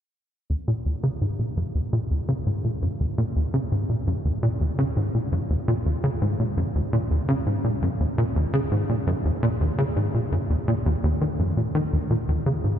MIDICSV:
0, 0, Header, 1, 2, 480
1, 0, Start_track
1, 0, Key_signature, -6, "minor"
1, 0, Tempo, 714286
1, 336, Time_signature, 4, 2, 24, 8
1, 8596, End_track
2, 0, Start_track
2, 0, Title_t, "Analog synth bass"
2, 0, Program_c, 0, 38
2, 334, Note_on_c, 0, 39, 74
2, 376, Note_off_c, 0, 39, 0
2, 455, Note_on_c, 0, 46, 89
2, 496, Note_off_c, 0, 46, 0
2, 576, Note_on_c, 0, 39, 69
2, 643, Note_off_c, 0, 39, 0
2, 694, Note_on_c, 0, 49, 91
2, 736, Note_off_c, 0, 49, 0
2, 815, Note_on_c, 0, 44, 77
2, 917, Note_off_c, 0, 44, 0
2, 935, Note_on_c, 0, 46, 67
2, 976, Note_off_c, 0, 46, 0
2, 1055, Note_on_c, 0, 42, 69
2, 1096, Note_off_c, 0, 42, 0
2, 1175, Note_on_c, 0, 39, 67
2, 1216, Note_off_c, 0, 39, 0
2, 1296, Note_on_c, 0, 46, 92
2, 1336, Note_off_c, 0, 46, 0
2, 1416, Note_on_c, 0, 39, 71
2, 1483, Note_off_c, 0, 39, 0
2, 1535, Note_on_c, 0, 49, 90
2, 1576, Note_off_c, 0, 49, 0
2, 1656, Note_on_c, 0, 44, 68
2, 1757, Note_off_c, 0, 44, 0
2, 1776, Note_on_c, 0, 46, 74
2, 1817, Note_off_c, 0, 46, 0
2, 1897, Note_on_c, 0, 42, 70
2, 1937, Note_off_c, 0, 42, 0
2, 2017, Note_on_c, 0, 39, 69
2, 2057, Note_off_c, 0, 39, 0
2, 2137, Note_on_c, 0, 46, 91
2, 2177, Note_off_c, 0, 46, 0
2, 2257, Note_on_c, 0, 39, 78
2, 2324, Note_off_c, 0, 39, 0
2, 2377, Note_on_c, 0, 49, 91
2, 2417, Note_off_c, 0, 49, 0
2, 2498, Note_on_c, 0, 44, 70
2, 2598, Note_off_c, 0, 44, 0
2, 2617, Note_on_c, 0, 46, 70
2, 2657, Note_off_c, 0, 46, 0
2, 2737, Note_on_c, 0, 42, 74
2, 2777, Note_off_c, 0, 42, 0
2, 2856, Note_on_c, 0, 39, 69
2, 2896, Note_off_c, 0, 39, 0
2, 2975, Note_on_c, 0, 46, 96
2, 3016, Note_off_c, 0, 46, 0
2, 3096, Note_on_c, 0, 39, 69
2, 3163, Note_off_c, 0, 39, 0
2, 3216, Note_on_c, 0, 49, 92
2, 3256, Note_off_c, 0, 49, 0
2, 3336, Note_on_c, 0, 44, 72
2, 3437, Note_off_c, 0, 44, 0
2, 3458, Note_on_c, 0, 46, 68
2, 3497, Note_off_c, 0, 46, 0
2, 3576, Note_on_c, 0, 42, 68
2, 3617, Note_off_c, 0, 42, 0
2, 3696, Note_on_c, 0, 39, 74
2, 3737, Note_off_c, 0, 39, 0
2, 3816, Note_on_c, 0, 46, 97
2, 3857, Note_off_c, 0, 46, 0
2, 3936, Note_on_c, 0, 39, 70
2, 4004, Note_off_c, 0, 39, 0
2, 4057, Note_on_c, 0, 49, 93
2, 4097, Note_off_c, 0, 49, 0
2, 4177, Note_on_c, 0, 44, 77
2, 4278, Note_off_c, 0, 44, 0
2, 4298, Note_on_c, 0, 46, 72
2, 4337, Note_off_c, 0, 46, 0
2, 4417, Note_on_c, 0, 42, 71
2, 4457, Note_off_c, 0, 42, 0
2, 4537, Note_on_c, 0, 39, 69
2, 4577, Note_off_c, 0, 39, 0
2, 4656, Note_on_c, 0, 46, 94
2, 4696, Note_off_c, 0, 46, 0
2, 4776, Note_on_c, 0, 39, 72
2, 4843, Note_off_c, 0, 39, 0
2, 4895, Note_on_c, 0, 49, 92
2, 4936, Note_off_c, 0, 49, 0
2, 5016, Note_on_c, 0, 44, 70
2, 5117, Note_off_c, 0, 44, 0
2, 5136, Note_on_c, 0, 46, 76
2, 5177, Note_off_c, 0, 46, 0
2, 5257, Note_on_c, 0, 42, 69
2, 5297, Note_off_c, 0, 42, 0
2, 5377, Note_on_c, 0, 39, 72
2, 5417, Note_off_c, 0, 39, 0
2, 5497, Note_on_c, 0, 46, 91
2, 5537, Note_off_c, 0, 46, 0
2, 5616, Note_on_c, 0, 39, 75
2, 5684, Note_off_c, 0, 39, 0
2, 5735, Note_on_c, 0, 49, 97
2, 5776, Note_off_c, 0, 49, 0
2, 5856, Note_on_c, 0, 44, 73
2, 5957, Note_off_c, 0, 44, 0
2, 5976, Note_on_c, 0, 46, 71
2, 6017, Note_off_c, 0, 46, 0
2, 6096, Note_on_c, 0, 42, 80
2, 6136, Note_off_c, 0, 42, 0
2, 6216, Note_on_c, 0, 39, 70
2, 6257, Note_off_c, 0, 39, 0
2, 6335, Note_on_c, 0, 46, 98
2, 6376, Note_off_c, 0, 46, 0
2, 6455, Note_on_c, 0, 39, 70
2, 6523, Note_off_c, 0, 39, 0
2, 6575, Note_on_c, 0, 49, 96
2, 6616, Note_off_c, 0, 49, 0
2, 6695, Note_on_c, 0, 44, 71
2, 6796, Note_off_c, 0, 44, 0
2, 6816, Note_on_c, 0, 46, 72
2, 6856, Note_off_c, 0, 46, 0
2, 6935, Note_on_c, 0, 42, 70
2, 6976, Note_off_c, 0, 42, 0
2, 7055, Note_on_c, 0, 39, 77
2, 7096, Note_off_c, 0, 39, 0
2, 7175, Note_on_c, 0, 46, 95
2, 7216, Note_off_c, 0, 46, 0
2, 7296, Note_on_c, 0, 39, 92
2, 7364, Note_off_c, 0, 39, 0
2, 7416, Note_on_c, 0, 39, 97
2, 7484, Note_off_c, 0, 39, 0
2, 7535, Note_on_c, 0, 51, 75
2, 7576, Note_off_c, 0, 51, 0
2, 7655, Note_on_c, 0, 42, 74
2, 7757, Note_off_c, 0, 42, 0
2, 7775, Note_on_c, 0, 46, 71
2, 7843, Note_off_c, 0, 46, 0
2, 7895, Note_on_c, 0, 51, 95
2, 7936, Note_off_c, 0, 51, 0
2, 8015, Note_on_c, 0, 39, 76
2, 8056, Note_off_c, 0, 39, 0
2, 8134, Note_on_c, 0, 46, 94
2, 8176, Note_off_c, 0, 46, 0
2, 8255, Note_on_c, 0, 39, 72
2, 8323, Note_off_c, 0, 39, 0
2, 8374, Note_on_c, 0, 49, 93
2, 8415, Note_off_c, 0, 49, 0
2, 8494, Note_on_c, 0, 44, 78
2, 8596, Note_off_c, 0, 44, 0
2, 8596, End_track
0, 0, End_of_file